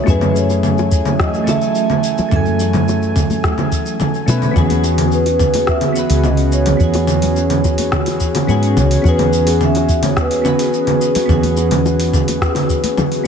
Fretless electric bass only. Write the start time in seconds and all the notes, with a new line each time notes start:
0.08 F#2
2.32 F#2
4.28 B2
4.56 E2
6.10 C#2
6.80 E2
8.48 G#2
8.77 C#2
9.05 E2
11.29 E2